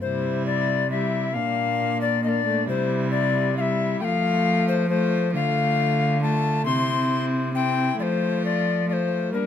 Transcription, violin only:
0.03 E4
0.91 E4
1.35 D4
2.23 D4
2.67 E4
3.56 E4
4.01 F4
4.90 F4
5.33 F4
6.23 F4
6.67 E4
7.56 E4
8.00 F4
8.89 F4
9.34 D4

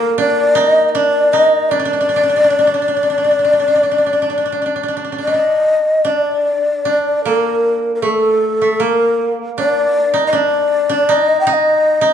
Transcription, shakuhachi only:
Already playing: A#4
0.19 D5
0.58 D#5
0.89 D#5
0.96 D5
1.33 D#5
1.70 D5
5.22 D#5
6.05 D#5
6.16 D5
7.25 A#4
7.95 A#4
8.02 A4
8.83 A#4
9.59 D5
10.27 D#5
10.36 D5
11.12 D#5
11.41 G5
11.50 D#5 G5

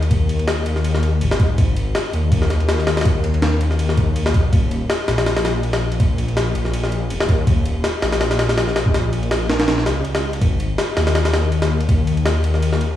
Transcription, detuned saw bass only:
Already playing: D#2
0.66 D#2
1.21 G#1
1.40 G#2
1.58 G#1
2.13 D#2
3.61 D#2
4.34 B1
4.53 D#1
5.08 A#1
6.55 A#1
7.10 D#1
7.29 D#2
7.47 D#1
8.02 A#1
9.49 A#1
9.86 C#2
10.41 G#1
10.97 D#2
12.44 D#2

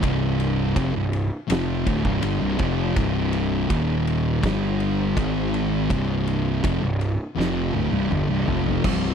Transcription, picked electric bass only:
0.03 C1
0.76 F1
0.95 C1
1.50 F1
1.87 D1
2.05 C1
2.23 G1
2.42 C1
2.60 F1
2.96 C1
3.70 D#1
4.43 G1
5.17 G#1
5.91 C1
6.64 F1
6.82 C1
7.37 F1
7.74 D1
7.92 C1
8.10 G1
8.29 C1
8.48 F1
8.85 C1

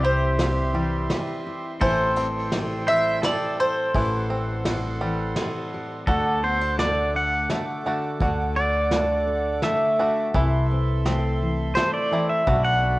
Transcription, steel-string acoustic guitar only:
Already playing: C3 E3 G3 E4
0.03 C4
0.39 G3
0.73 E3 C4
1.46 E4
1.80 A2 E3 G3 C4 G4
2.17 C4
2.53 G3
2.88 E3 C4
3.60 G4
3.95 A2 G4
4.31 C4
4.67 G3
5.02 E3 C4
5.74 G4
6.08 D2 F#4
6.44 B3
6.61 D4
6.80 A3
7.15 D3
7.51 A3
7.86 D3
8.21 D2 F#4
8.57 D4
8.92 A3
9.28 D3
9.64 A3
9.99 D3
10.35 C3 E4
10.71 C4
11.07 A3
11.41 E3
11.77 A3
12.11 E3
12.47 B2 F#4
12.83 D4

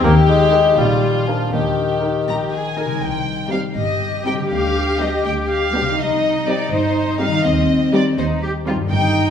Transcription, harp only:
Already playing: D#4 D#5
0.04 D#3
0.28 D#4
0.53 D#4 A#4
0.77 A#2
1.03 G#3
1.27 D4 A#4
1.52 D#3
1.77 D#4
2.02 G4
2.27 D#5
2.53 A#5
2.77 D#5
2.85 C3
2.89 G3
2.94 D#4
2.98 C5
4.33 D3
4.38 G3
4.42 D4
4.47 B4
5.81 C3
5.85 G3
5.90 D#4
5.94 C5
7.27 D#3
7.32 G3
7.36 D#4
7.41 C5
8.73 G2
8.77 G3
8.82 D#4
8.86 A#4

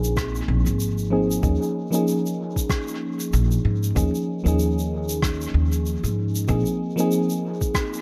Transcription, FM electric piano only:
Already playing: F3 A#3 C4 D#4 G#4
1.10 F3 A#3 C4 D#4 G#4
1.42 F3 A#3 C#4 D#4 G#4
1.91 F3 A#3 C#4 D#4
1.95 G#4
3.95 F3 A#3 C#4 D#4 G#4
4.44 F3 A#3 C#4 D#4
4.48 G#4
6.48 F3 A#3 C4 D#4 G#4
6.96 F3 A#3 C4 D#4
7.00 G#4

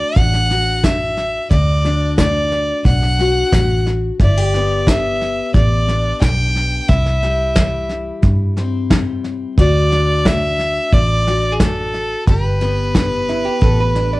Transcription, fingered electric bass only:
0.16 A1
1.51 D2
2.85 B1
3.53 A1
4.19 G1
5.54 A1
6.22 B1
6.89 C2
8.23 G2
9.58 D2
10.93 A1
12.27 G1
13.62 A1

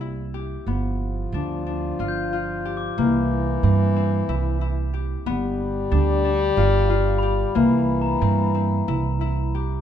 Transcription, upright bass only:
Already playing: C2
0.66 G1
1.32 D2
1.99 G1
2.98 C2
3.63 G2
4.29 C2
5.26 G1
5.92 D2
6.57 G1
7.56 C2
8.21 G2
8.88 C2

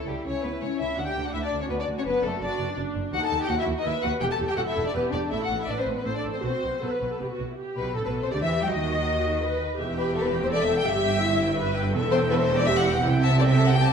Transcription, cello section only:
0.07 C#2
0.25 C#2
0.44 C#2
0.61 C#2
0.80 C#2
0.98 D2
1.16 D2
1.34 D2
1.52 D2
1.70 D2
1.87 D2
2.06 F#2
2.24 F#2
2.42 F#2
2.60 F#2
2.77 F#2
2.95 F#2
3.12 D#2
3.31 D#2
3.48 D#2
3.66 D#2
3.85 D#2
4.03 D#2
4.21 E2
4.40 E2
4.58 E2
4.76 E2
4.95 E2
5.13 E2
5.32 A2
5.50 A2
5.67 A2
5.87 A2
6.05 A2
6.24 A2
6.43 B2
6.62 B2
6.82 B2
7.01 B2
7.20 B2
7.39 B2
7.77 B2
7.96 A2
8.05 B2
8.23 C3
8.33 D3
8.42 E3
8.61 G3
8.71 D#3
9.79 E2
10.87 G2
11.94 E2
13.03 C3

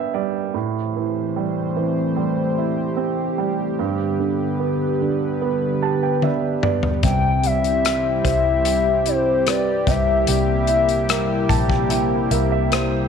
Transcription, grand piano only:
Already playing: G2 D3 G3 B3 D4 E5 G5 B5
0.14 G3 D5
0.54 A2
0.96 E3
1.36 G3
1.76 E3
2.16 G3
2.58 E4
2.97 C4
3.38 G3
3.79 G2
4.19 D3
4.60 B3
5.01 D3
5.42 B3
5.83 G4 A5
6.03 G5
6.23 D4 E5
6.63 B3 D5
7.03 C3
7.44 G3
7.84 E4
8.24 C5
8.65 G4
9.06 E4
9.47 B4
9.87 C3
10.28 G3
10.68 E4
11.10 A#4
11.49 G4 A5
11.70 G5
11.90 E4 G5
12.31 A#4 E5
12.52 E5
12.72 G4 C5

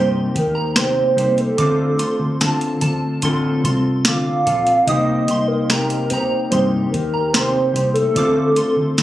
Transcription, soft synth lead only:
0.37 A#4
0.77 C5
1.40 A4
4.07 F5
4.87 D#5
5.48 A#4
6.10 C5
6.50 C5
6.91 A#4
7.33 C5
7.94 A4

